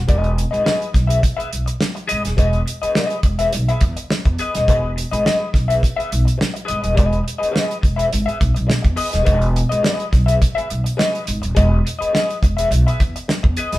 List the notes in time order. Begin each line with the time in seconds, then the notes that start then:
0.08 E1 G#4 B4 D#5, kick, closed hi-hat
0.24 closed hi-hat
0.36 muted clean electric guitar stroke, closed hi-hat
0.51 G#1 G#4 B4 D#5, closed hi-hat
0.64 G#4 B4 D#5, snare
0.82 closed hi-hat
0.93 B1, muted clean electric guitar stroke, kick, snare, closed hi-hat
1.07 G#4 B4 E5, closed hi-hat
1.22 muted clean electric guitar stroke, kick, closed hi-hat
1.37 G#4 B4 E5, muted upright bass stroke, closed hi-hat
1.50 B1, muted clean electric guitar stroke, closed hi-hat
1.66 muted clean electric guitar stroke, closed hi-hat
1.81 snare
1.95 muted clean electric guitar stroke, closed hi-hat
2.08 G#1 G#4 B4 D#5, closed hi-hat
2.24 D#1, muted clean electric guitar stroke, snare, closed hi-hat
2.37 E1 G#4 B4 D#5, kick, closed hi-hat
2.53 closed hi-hat
2.66 muted clean electric guitar stroke, closed hi-hat
2.82 G#4 B4 D#5, muted upright bass stroke, closed hi-hat
2.95 G#4 B4 D#5, snare
3.10 closed hi-hat
3.23 E1, muted clean electric guitar stroke, kick, closed hi-hat
3.39 G#4 B4 E5, closed hi-hat
3.53 B1, muted clean electric guitar stroke, closed hi-hat
3.68 G#4 B4 E5, closed hi-hat
3.81 E2, muted clean electric guitar stroke, kick, closed hi-hat
3.97 muted clean electric guitar stroke, closed hi-hat
4.10 muted clean electric guitar stroke, snare
4.25 E2, muted clean electric guitar stroke, kick, closed hi-hat
4.39 G#4 B4 D#5, closed hi-hat
4.55 D#1 G#4 B4 D#5, snare, closed hi-hat
4.68 E1 G#4 B4 D#5, kick, closed hi-hat
4.96 muted clean electric guitar stroke, closed hi-hat
5.11 G#1 G#4 B4 D#5, closed hi-hat
5.25 G#4 B4 D#5, snare
5.53 B1, muted clean electric guitar stroke, kick, snare, closed hi-hat
5.68 G#4 B4 E5, closed hi-hat
5.82 muted clean electric guitar stroke, kick, closed hi-hat
5.96 G#4 B4 E5, muted upright bass stroke, closed hi-hat
6.11 B1, muted clean electric guitar stroke, closed hi-hat
6.25 muted clean electric guitar stroke, closed hi-hat
6.38 muted clean electric guitar stroke, snare
6.54 muted clean electric guitar stroke, closed hi-hat
6.65 G#4 B4 D#5, closed hi-hat
6.70 G#1
6.82 D#1 G#4 B4 D#5, closed hi-hat
6.95 E1 G#4 B4 D#5, kick, closed hi-hat
7.13 closed hi-hat
7.24 muted clean electric guitar stroke
7.28 closed hi-hat
7.38 G#4 B4 D#5, muted upright bass stroke
7.43 closed hi-hat
7.51 G#4 B4 D#5
7.56 snare
7.71 closed hi-hat
7.81 E1, muted clean electric guitar stroke, kick, closed hi-hat
7.96 G#4 B4 E5, closed hi-hat
8.10 G#1, muted clean electric guitar stroke, closed hi-hat
8.26 G#4 B4 E5, closed hi-hat
8.39 B1, muted clean electric guitar stroke, kick, closed hi-hat
8.55 B1, muted clean electric guitar stroke, closed hi-hat
8.67 muted clean electric guitar stroke, snare
8.82 E2, muted clean electric guitar stroke, kick, closed hi-hat
8.96 G#4 B4 D#5, open hi-hat
9.11 D#1 G#4 B4 D#5, snare, closed hi-hat
9.24 E1 G#4 B4 D#5, kick, closed hi-hat
9.42 closed hi-hat
9.55 muted clean electric guitar stroke, closed hi-hat
9.69 G#1 G#4 B4 D#5, closed hi-hat
9.83 G#4 B4 D#5, snare
10.00 closed hi-hat
10.11 B1, muted clean electric guitar stroke, kick, snare, closed hi-hat
10.26 G#4 B4 E5, closed hi-hat
10.40 muted clean electric guitar stroke, kick, closed hi-hat
10.55 G#4 B4 E5, muted upright bass stroke, closed hi-hat
10.70 B1, muted clean electric guitar stroke, closed hi-hat
10.84 muted clean electric guitar stroke, closed hi-hat
10.97 G#4 B4 D#5, snare
11.15 closed hi-hat
11.24 G#1, muted clean electric guitar stroke, closed hi-hat
11.42 D#1, muted clean electric guitar stroke, closed hi-hat
11.55 E1 G#4 B4 D#5, kick, closed hi-hat
11.85 muted clean electric guitar stroke, closed hi-hat
11.99 G#4 B4 D#5, muted upright bass stroke, closed hi-hat
12.13 G#4 B4 D#5, snare
12.30 closed hi-hat
12.43 E1, muted clean electric guitar stroke, kick, closed hi-hat
12.57 G#4 B4 E5, closed hi-hat
12.71 B1, muted clean electric guitar stroke, closed hi-hat
12.87 G#4 B4 E5, closed hi-hat
13.00 E2, muted clean electric guitar stroke, kick, closed hi-hat
13.16 muted clean electric guitar stroke, closed hi-hat
13.28 muted clean electric guitar stroke, snare
13.43 E2, muted clean electric guitar stroke, kick
13.57 G#4 B4 D#5, closed hi-hat
13.72 D#1 G#4 B4 D#5, snare, closed hi-hat